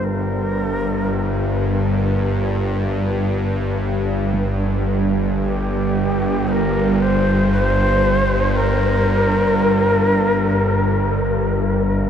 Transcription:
Already playing: synth drone G1 G2
0.03 shakuhachi A#4
4.34 singing bowl G3
5.42 shakuhachi G4
6.48 shakuhachi A#4 C5
7.02 shakuhachi C5
7.51 shakuhachi C5
8.56 shakuhachi A#4

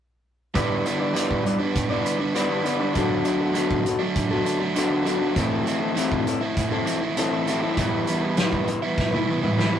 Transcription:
0.54 overdriven electric guitar G2 D3 G3 B3 D4, clean electric guitar G3 B3 E4 B4 D5, kick, closed hi-hat
0.85 overdriven electric guitar D3 G3 B3 D4, closed hi-hat
1.00 clean electric guitar E4 B4 D5
1.13 overdriven electric guitar G2 D3 G3 B3 D4, clean electric guitar G3 B3 E4 B4 D5, closed hi-hat
1.31 kick
1.44 clean electric guitar B3 E4 B4 D5, muted overdriven electric guitar stroke, closed hi-hat
1.59 overdriven electric guitar G3 B3 D4, muted clean electric guitar stroke
1.76 kick, closed hi-hat
1.89 overdriven electric guitar G3 B3 D4, clean electric guitar E4 B4 D5
2.03 overdriven electric guitar D3 G3 B3 D4, closed hi-hat
2.19 overdriven electric guitar G3 B3 D4, muted clean electric guitar stroke
2.34 overdriven electric guitar G2 D3 G3 B3 D4, clean electric guitar G3 B3 E4 B4 D5, closed hi-hat
2.49 overdriven electric guitar G3 B3 D4
2.63 overdriven electric guitar D3 G3 B3 D4, clean electric guitar B3 E4 B4, closed hi-hat
2.67 clean electric guitar D5
2.79 overdriven electric guitar G3 B3 D4, clean electric guitar E4 B4 D5
2.94 overdriven electric guitar D3 F#3 A3 D4, clean electric guitar D3 F#3 B3 F#4 A4, kick, closed hi-hat
3.24 overdriven electric guitar D3 F#3 A3 D4, closed hi-hat
3.40 clean electric guitar B3 F#4 A4
3.53 overdriven electric guitar D3 F#3 A3 D4, clean electric guitar D3 F#3 B3 F#4, closed hi-hat
3.57 clean electric guitar A4
3.71 kick
3.85 clean electric guitar F#3 B3 F#4 A4, muted overdriven electric guitar stroke, closed hi-hat
3.99 overdriven electric guitar F#3 A3 D4, muted clean electric guitar stroke
4.16 kick, closed hi-hat
4.29 overdriven electric guitar F#3 A3 D4, clean electric guitar B3 F#4 A4
4.44 overdriven electric guitar D3 F#3 A3 D4, closed hi-hat
4.59 overdriven electric guitar F#3 A3 D4, muted clean electric guitar stroke
4.74 overdriven electric guitar D3 F#3 A3 D4, clean electric guitar D3 F#3 B3 F#4 A4, closed hi-hat
4.89 overdriven electric guitar F#3 A3 D4
5.04 overdriven electric guitar D3 F#3 A3 D4, clean electric guitar F#3 B3 F#4 A4, closed hi-hat
5.20 overdriven electric guitar F#3 A3 D4, clean electric guitar B3 F#4 A4
5.34 overdriven electric guitar A2 E3 A3 C4 E4, clean electric guitar A3 C4 E4 A4, kick, closed hi-hat
5.66 overdriven electric guitar E3 A3 C4 E4, closed hi-hat
5.81 clean electric guitar C4 E4 A4
5.95 overdriven electric guitar A2 E3 A3 C4 E4, clean electric guitar A3 C4 E4 A4, closed hi-hat
6.12 kick
6.25 clean electric guitar A3 C4 E4 A4, muted overdriven electric guitar stroke, closed hi-hat
6.41 overdriven electric guitar A3 C4 E4, muted clean electric guitar stroke
6.57 kick, closed hi-hat
6.71 overdriven electric guitar A3 C4 E4, clean electric guitar C4 E4 A4
6.85 overdriven electric guitar E3 A3 C4 E4, closed hi-hat
7.01 overdriven electric guitar A3 C4 E4, muted clean electric guitar stroke
7.16 overdriven electric guitar A2 E3 A3 C4 E4, clean electric guitar A3 C4 E4 A4, closed hi-hat
7.32 overdriven electric guitar A3 C4 E4
7.47 overdriven electric guitar E3 A3 C4 E4, clean electric guitar A3 C4 E4 A4, closed hi-hat
7.61 overdriven electric guitar A3 C4 E4, clean electric guitar C4 E4 A4
7.76 overdriven electric guitar E3 G3 B3 E4, clean electric guitar E3 G3 B3 E4 B4, kick, closed hi-hat
8.07 overdriven electric guitar E3 G3 B3 E4, closed hi-hat
8.22 clean electric guitar B3 E4 B4
8.37 clean electric guitar E3 G3 B3 E4 B4, overdriven electric guitar E3 G3 B3 E4, snare, closed hi-hat
8.53 kick
8.67 clean electric guitar G3 B3 E4 B4, muted overdriven electric guitar stroke, closed hi-hat
8.82 overdriven electric guitar G3 B3 E4, muted clean electric guitar stroke
8.98 kick, snare
9.11 clean electric guitar B3 E4 B4, overdriven electric guitar B3 E4, high tom
9.16 overdriven electric guitar G3
9.29 overdriven electric guitar E3 G3 B3 E4
9.42 overdriven electric guitar B3 E4, muted clean electric guitar stroke, mid tom
9.46 overdriven electric guitar G3
9.57 clean electric guitar E3 G3 B3 E4 B4, overdriven electric guitar E3 G3 B3 E4, snare
9.74 overdriven electric guitar G3 B3 E4

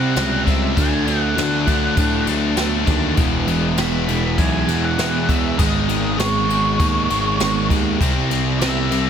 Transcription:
Already playing: overdriven electric guitar C3 G3 C4, distorted electric guitar C3 G3 C4 E4, picked electric bass C3, lead electric guitar F#5
0.15 picked electric bass C#2, overdriven electric guitar C3 G3 C4, distorted electric guitar E4, snare, crash
0.45 overdriven electric guitar C3 G3 C4, lead electric guitar E5, kick, crash
0.75 picked electric bass D2, overdriven electric guitar D3 A3 D4, distorted electric guitar F#3, lead electric guitar G#5, kick, crash
1.05 overdriven electric guitar D3 A3 D4, lead electric guitar F#5, crash
1.37 picked electric bass D2, overdriven electric guitar D3 A3 D4, snare, crash
1.66 overdriven electric guitar D3 A3 D4, distorted electric guitar F#3, kick, crash
1.97 picked electric bass A2, overdriven electric guitar D3 A3 D4, kick, crash
2.26 picked electric bass D2, overdriven electric guitar D3 A3 D4, crash
2.57 picked electric bass D2, overdriven electric guitar D3 A3 D4, distorted electric guitar F#3, snare, crash
2.86 picked electric bass D#2, overdriven electric guitar D3 A3 D4, kick, crash
3.16 picked electric bass E1, overdriven electric guitar E2 B2 E3, distorted electric guitar G#3 B3 E4, kick, crash
3.47 overdriven electric guitar E2 B2 E3, crash
3.77 picked electric bass E1, overdriven electric guitar E2 B2 E3, lead electric guitar B5, snare, crash
4.08 overdriven electric guitar E2 B2 E3, distorted electric guitar G#3 B3 E4, crash
4.38 picked electric bass B1, overdriven electric guitar E2 B2 E3, lead electric guitar G#5, kick, crash
4.68 overdriven electric guitar E2 B2 E3, picked electric bass E2, crash
4.85 lead electric guitar F#5
4.98 picked electric bass E2, overdriven electric guitar E2 B2 E3, distorted electric guitar G#3 B3 E4, snare, crash
5.28 overdriven electric guitar E2 B2 E3, lead electric guitar E5, kick, crash
5.58 picked electric bass G#1, overdriven electric guitar G#2 D#3 G#3, distorted electric guitar B3 D#4, lead electric guitar D#5, kick, crash
5.88 overdriven electric guitar G#2 D#3 G#3, crash
6.18 picked electric bass G#1, overdriven electric guitar G#2 D#3 G#3, lead electric guitar C#5, snare, crash
6.48 overdriven electric guitar G#2 D#3 G#3, distorted electric guitar B3 D#4, crash
6.79 picked electric bass D#2, overdriven electric guitar G#2 D#3 G#3, kick, crash
7.10 picked electric bass G#1, overdriven electric guitar G#2 D#3 G#3, crash
7.40 picked electric bass G#1, overdriven electric guitar G#2 D#3 G#3, distorted electric guitar B3 D#4, snare, crash
7.70 picked electric bass D#2, overdriven electric guitar G#2 D#3 G#3, kick, crash
8.01 picked electric bass C2, overdriven electric guitar C3 G3 C4, distorted electric guitar E4, kick, crash
8.31 overdriven electric guitar C3 G3 C4, crash
8.59 picked electric bass C2, overdriven electric guitar C3 G3 C4, lead electric guitar E5, snare, crash
8.91 overdriven electric guitar C3 G3 C4, distorted electric guitar E4, crash

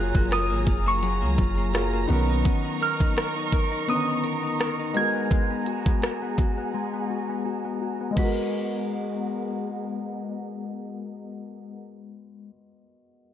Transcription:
Already playing: 808-style bass F#1, clean electric guitar F#3 A#3 F4, grand piano F#3 A#3 F4 G#4, string section G#4 C#5 G#5 A#5, synth bell F#6
0.15 808-style bass F#1, clean electric guitar A#3, kick
0.31 clean electric guitar F4, synth bell D#6, cross-stick, closed hi-hat
0.51 808-style bass G#1, clean electric guitar A#3
0.67 808-style bass F#1, clean electric guitar F4, kick, closed hi-hat
0.86 clean electric guitar A#3, synth bell C#6
1.03 clean electric guitar F#3, closed hi-hat
1.22 808-style bass C#2, clean electric guitar A#3
1.38 808-style bass F#1, clean electric guitar F4, kick, closed hi-hat
1.58 clean electric guitar A#3
1.73 grand piano F#3 A#3 F4 G#4, clean electric guitar F4, cross-stick, closed hi-hat
1.93 clean electric guitar A#3
2.07 808-style bass B1, grand piano D#3 B3 C#4, string section B3 D#5 C#6, clean electric guitar B3, closed hi-hat
2.12 grand piano A#4
2.29 clean electric guitar D#4
2.45 clean electric guitar B3, kick, closed hi-hat
2.65 clean electric guitar D#4
2.81 clean electric guitar A#4, synth bell F6, closed hi-hat
3.00 clean electric guitar D#4, kick
3.17 clean electric guitar A#4, cross-stick, closed hi-hat
3.36 clean electric guitar D#4
3.52 clean electric guitar A#4, kick, closed hi-hat
3.72 clean electric guitar D#4
3.87 grand piano D3 B3 C#4 B4, clean electric guitar B3, synth bell D#6, closed hi-hat
3.93 grand piano D#3
4.08 clean electric guitar D#4
4.24 clean electric guitar A#4, closed hi-hat
4.43 clean electric guitar D#4
4.60 clean electric guitar A#4, cross-stick, closed hi-hat
4.79 clean electric guitar D#4
4.93 grand piano G#3 B3 F#4, clean electric guitar G#3, string section G#4 F#5 G#5, synth bell G#6, closed hi-hat
4.98 grand piano A#4
5.15 clean electric guitar B3
5.31 clean electric guitar G#3, kick, closed hi-hat
5.51 clean electric guitar B3
5.66 clean electric guitar F#4, closed hi-hat
5.86 clean electric guitar B3, kick
6.02 clean electric guitar F#4, cross-stick, closed hi-hat
6.22 clean electric guitar B3
6.38 clean electric guitar F#4, kick, closed hi-hat
6.58 clean electric guitar B3
6.74 clean electric guitar G#3
6.94 clean electric guitar B3
7.10 clean electric guitar F#4
7.29 clean electric guitar B3
7.46 clean electric guitar F#4
7.65 clean electric guitar B3
7.81 clean electric guitar F#4
8.01 clean electric guitar B3
8.11 clean electric guitar G#3, grand piano G#3
8.16 grand piano B3 F#4, string section B3 G#4 A#4 D#5 F#5, clean electric guitar B3, synth bell B6, kick, crash
8.22 clean electric guitar F#4, grand piano A#4
8.32 clean electric guitar A#4

